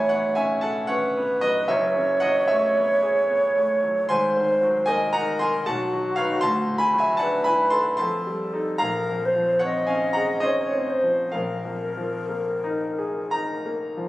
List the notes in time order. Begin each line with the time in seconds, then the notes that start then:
Already playing: A1 A2 E3 F#3 C#5 E5 F#5 G#5 A5 B5
0.09 B3 C#5 F#5
0.35 C#4 E5 G#5
0.61 A4 F#5 A5
0.87 C#4 B4 C#5 F#5
1.17 B3
1.41 F#3 B4 D#5
1.68 F#1 F#2 C#5 E5
1.97 C#3
2.20 F#3 D#5 F#5
2.48 A3 C#5 E5
2.77 B3
3.03 G#4
3.30 B3
3.56 A3
3.84 F#3
4.09 G#1 G#2 C5 G#5 C6
4.37 D#3
4.63 F#3
4.86 A#3 A#4 D#5 G#5
5.13 D#4 F#5 A#5
5.39 A#4 G#5 C6
5.66 B1 F#4 F#5 A5
5.93 F#3
6.16 D#4 B4 C#5 F5
6.41 D2 A5 C6
6.68 A2
6.78 G#5 B5
6.94 F#3
6.98 E5 G#5
7.17 D4 F#5 A5
7.21 B4
7.44 E4 G#5 B5
7.70 A4 A5 C6
7.97 F2 A4 A5 C6
8.27 G3
8.53 D#4 A4
8.78 A#1 F5 A#5
8.82 A#4
9.09 F2
9.25 C5
9.36 F3
9.59 C4 C#5 F#5
9.65 D#5
9.87 C#4 F5 G#5
10.13 G#4 F#5 A#5
10.40 C#4 C5 D#5
10.46 C#5
10.72 C4
10.90 C5
11.03 F3
11.32 A#1 A#4 F5
11.65 F2
11.97 F3
12.29 A#3
12.64 D#4
12.99 G#4
13.31 D#4 A#5
13.66 A#3
13.97 F3